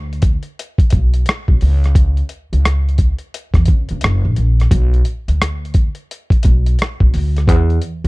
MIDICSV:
0, 0, Header, 1, 3, 480
1, 0, Start_track
1, 0, Tempo, 689655
1, 1358, Time_signature, 4, 2, 24, 8
1, 5622, End_track
2, 0, Start_track
2, 0, Title_t, "Upright bass"
2, 0, Program_c, 0, 32
2, 0, Note_on_c, 0, 38, 89
2, 243, Note_off_c, 0, 38, 0
2, 647, Note_on_c, 0, 35, 76
2, 849, Note_off_c, 0, 35, 0
2, 1033, Note_on_c, 0, 35, 80
2, 1108, Note_off_c, 0, 35, 0
2, 1130, Note_on_c, 0, 37, 85
2, 1536, Note_off_c, 0, 37, 0
2, 1759, Note_on_c, 0, 37, 79
2, 2166, Note_off_c, 0, 37, 0
2, 2466, Note_on_c, 0, 40, 70
2, 2544, Note_off_c, 0, 40, 0
2, 2565, Note_on_c, 0, 37, 83
2, 2690, Note_off_c, 0, 37, 0
2, 2720, Note_on_c, 0, 37, 77
2, 2792, Note_off_c, 0, 37, 0
2, 2810, Note_on_c, 0, 30, 93
2, 2933, Note_off_c, 0, 30, 0
2, 2957, Note_on_c, 0, 34, 82
2, 3030, Note_off_c, 0, 34, 0
2, 3048, Note_on_c, 0, 34, 75
2, 3249, Note_off_c, 0, 34, 0
2, 3281, Note_on_c, 0, 35, 100
2, 3486, Note_off_c, 0, 35, 0
2, 3675, Note_on_c, 0, 38, 78
2, 4084, Note_off_c, 0, 38, 0
2, 4488, Note_on_c, 0, 35, 84
2, 4690, Note_off_c, 0, 35, 0
2, 4880, Note_on_c, 0, 35, 75
2, 4952, Note_off_c, 0, 35, 0
2, 4969, Note_on_c, 0, 38, 87
2, 5207, Note_off_c, 0, 38, 0
2, 5207, Note_on_c, 0, 40, 92
2, 5409, Note_off_c, 0, 40, 0
2, 5599, Note_on_c, 0, 42, 98
2, 5622, Note_off_c, 0, 42, 0
2, 5622, End_track
3, 0, Start_track
3, 0, Title_t, "Drums"
3, 89, Note_on_c, 9, 42, 35
3, 152, Note_off_c, 9, 42, 0
3, 152, Note_on_c, 9, 42, 61
3, 157, Note_on_c, 9, 36, 92
3, 222, Note_off_c, 9, 42, 0
3, 227, Note_off_c, 9, 36, 0
3, 297, Note_on_c, 9, 42, 47
3, 367, Note_off_c, 9, 42, 0
3, 413, Note_on_c, 9, 42, 83
3, 482, Note_off_c, 9, 42, 0
3, 545, Note_on_c, 9, 36, 97
3, 554, Note_on_c, 9, 42, 35
3, 615, Note_off_c, 9, 36, 0
3, 623, Note_off_c, 9, 42, 0
3, 629, Note_on_c, 9, 42, 70
3, 645, Note_on_c, 9, 36, 93
3, 699, Note_off_c, 9, 42, 0
3, 714, Note_off_c, 9, 36, 0
3, 791, Note_on_c, 9, 42, 58
3, 861, Note_off_c, 9, 42, 0
3, 876, Note_on_c, 9, 42, 73
3, 897, Note_on_c, 9, 37, 95
3, 945, Note_off_c, 9, 42, 0
3, 967, Note_off_c, 9, 37, 0
3, 1031, Note_on_c, 9, 36, 83
3, 1101, Note_off_c, 9, 36, 0
3, 1120, Note_on_c, 9, 46, 44
3, 1190, Note_off_c, 9, 46, 0
3, 1281, Note_on_c, 9, 42, 42
3, 1292, Note_on_c, 9, 37, 36
3, 1351, Note_off_c, 9, 42, 0
3, 1359, Note_on_c, 9, 36, 116
3, 1361, Note_off_c, 9, 37, 0
3, 1362, Note_on_c, 9, 42, 82
3, 1429, Note_off_c, 9, 36, 0
3, 1431, Note_off_c, 9, 42, 0
3, 1511, Note_on_c, 9, 42, 33
3, 1581, Note_off_c, 9, 42, 0
3, 1595, Note_on_c, 9, 42, 66
3, 1664, Note_off_c, 9, 42, 0
3, 1760, Note_on_c, 9, 42, 48
3, 1830, Note_off_c, 9, 42, 0
3, 1847, Note_on_c, 9, 37, 95
3, 1851, Note_on_c, 9, 42, 81
3, 1917, Note_off_c, 9, 37, 0
3, 1920, Note_off_c, 9, 42, 0
3, 2009, Note_on_c, 9, 42, 32
3, 2074, Note_off_c, 9, 42, 0
3, 2074, Note_on_c, 9, 42, 62
3, 2078, Note_on_c, 9, 36, 86
3, 2144, Note_off_c, 9, 42, 0
3, 2147, Note_off_c, 9, 36, 0
3, 2217, Note_on_c, 9, 42, 48
3, 2287, Note_off_c, 9, 42, 0
3, 2326, Note_on_c, 9, 42, 82
3, 2396, Note_off_c, 9, 42, 0
3, 2462, Note_on_c, 9, 36, 94
3, 2467, Note_on_c, 9, 42, 33
3, 2473, Note_on_c, 9, 37, 31
3, 2531, Note_off_c, 9, 36, 0
3, 2536, Note_off_c, 9, 42, 0
3, 2542, Note_off_c, 9, 37, 0
3, 2544, Note_on_c, 9, 42, 65
3, 2562, Note_on_c, 9, 36, 95
3, 2614, Note_off_c, 9, 42, 0
3, 2631, Note_off_c, 9, 36, 0
3, 2706, Note_on_c, 9, 42, 55
3, 2775, Note_off_c, 9, 42, 0
3, 2792, Note_on_c, 9, 42, 71
3, 2814, Note_on_c, 9, 37, 87
3, 2861, Note_off_c, 9, 42, 0
3, 2883, Note_off_c, 9, 37, 0
3, 3038, Note_on_c, 9, 42, 64
3, 3107, Note_off_c, 9, 42, 0
3, 3201, Note_on_c, 9, 42, 41
3, 3211, Note_on_c, 9, 37, 37
3, 3270, Note_off_c, 9, 42, 0
3, 3279, Note_on_c, 9, 36, 107
3, 3281, Note_off_c, 9, 37, 0
3, 3281, Note_on_c, 9, 42, 87
3, 3348, Note_off_c, 9, 36, 0
3, 3351, Note_off_c, 9, 42, 0
3, 3437, Note_on_c, 9, 42, 32
3, 3507, Note_off_c, 9, 42, 0
3, 3515, Note_on_c, 9, 42, 67
3, 3584, Note_off_c, 9, 42, 0
3, 3677, Note_on_c, 9, 42, 45
3, 3747, Note_off_c, 9, 42, 0
3, 3769, Note_on_c, 9, 37, 89
3, 3772, Note_on_c, 9, 42, 85
3, 3839, Note_off_c, 9, 37, 0
3, 3842, Note_off_c, 9, 42, 0
3, 3933, Note_on_c, 9, 42, 31
3, 3994, Note_off_c, 9, 42, 0
3, 3994, Note_on_c, 9, 42, 56
3, 3998, Note_on_c, 9, 36, 91
3, 4064, Note_off_c, 9, 42, 0
3, 4068, Note_off_c, 9, 36, 0
3, 4140, Note_on_c, 9, 42, 47
3, 4210, Note_off_c, 9, 42, 0
3, 4253, Note_on_c, 9, 42, 78
3, 4323, Note_off_c, 9, 42, 0
3, 4387, Note_on_c, 9, 36, 94
3, 4398, Note_on_c, 9, 42, 34
3, 4456, Note_off_c, 9, 36, 0
3, 4468, Note_off_c, 9, 42, 0
3, 4475, Note_on_c, 9, 42, 72
3, 4486, Note_on_c, 9, 36, 92
3, 4544, Note_off_c, 9, 42, 0
3, 4556, Note_off_c, 9, 36, 0
3, 4638, Note_on_c, 9, 42, 57
3, 4708, Note_off_c, 9, 42, 0
3, 4724, Note_on_c, 9, 42, 73
3, 4746, Note_on_c, 9, 37, 96
3, 4794, Note_off_c, 9, 42, 0
3, 4816, Note_off_c, 9, 37, 0
3, 4875, Note_on_c, 9, 36, 87
3, 4944, Note_off_c, 9, 36, 0
3, 4968, Note_on_c, 9, 46, 44
3, 5037, Note_off_c, 9, 46, 0
3, 5126, Note_on_c, 9, 42, 43
3, 5137, Note_on_c, 9, 37, 36
3, 5196, Note_off_c, 9, 42, 0
3, 5203, Note_on_c, 9, 36, 113
3, 5206, Note_off_c, 9, 37, 0
3, 5212, Note_on_c, 9, 42, 80
3, 5273, Note_off_c, 9, 36, 0
3, 5282, Note_off_c, 9, 42, 0
3, 5360, Note_on_c, 9, 42, 31
3, 5429, Note_off_c, 9, 42, 0
3, 5440, Note_on_c, 9, 42, 69
3, 5510, Note_off_c, 9, 42, 0
3, 5600, Note_on_c, 9, 42, 43
3, 5622, Note_off_c, 9, 42, 0
3, 5622, End_track
0, 0, End_of_file